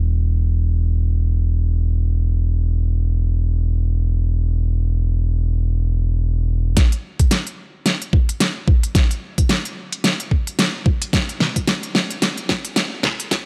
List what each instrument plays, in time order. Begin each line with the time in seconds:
Already playing: analog synth bass E1
6.77 kick, snare, closed hi-hat
6.92 closed hi-hat
7.20 kick, closed hi-hat
7.31 snare, closed hi-hat
7.47 closed hi-hat
7.86 snare, closed hi-hat
8.02 closed hi-hat
8.13 kick
8.29 closed hi-hat
8.41 snare, closed hi-hat
8.68 kick
8.84 closed hi-hat
8.95 kick, snare, closed hi-hat
9.11 closed hi-hat
9.38 kick, closed hi-hat
9.49 snare, closed hi-hat
9.65 closed hi-hat
9.92 closed hi-hat
10.04 snare, closed hi-hat
10.20 closed hi-hat
10.31 kick
10.47 closed hi-hat
10.59 snare, closed hi-hat
10.86 kick
11.02 closed hi-hat
11.13 kick, snare, closed hi-hat
11.29 closed hi-hat
11.40 snare
11.56 kick, closed hi-hat
11.67 snare, closed hi-hat
11.83 closed hi-hat
11.95 snare
12.10 closed hi-hat
12.22 snare, closed hi-hat
12.37 closed hi-hat
12.49 kick, snare
12.65 closed hi-hat
12.76 snare, closed hi-hat
13.03 kick, snare
13.20 closed hi-hat
13.31 kick, snare, closed hi-hat